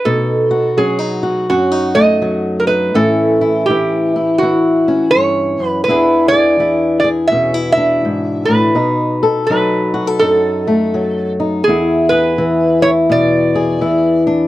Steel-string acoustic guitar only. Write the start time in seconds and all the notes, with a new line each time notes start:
0.06 B2 D#4
0.51 F#4
0.77 F#3 C#4
0.99 D#4
1.23 F#4
1.50 F#2 C#4
1.71 D#4
1.95 A3
2.22 F#3
2.67 D#4
2.94 A2 E3 C#4 E4
3.41 E4
3.69 E3 E4
4.16 E4
4.42 E3 E4
4.88 C#4
5.15 G2
5.60 F#2
5.88 E2 E3 D4 E4 G#4
6.32 G#4
6.59 E3 E4
7.04 G#4
7.32 B2 C#4
7.54 E4
7.77 D4
8.05 G#2
8.48 A2
8.75 B2 D#4
9.23 A4
9.50 F#3 D#4
9.94 F#4
10.07 A4
10.21 F#2 D#4
10.68 A3
10.94 F#3
11.40 D#4
11.68 E2 E4
12.12 G#4
12.38 E3
12.82 E4
13.10 B2
13.55 G#4
13.81 E3 E4
14.27 D4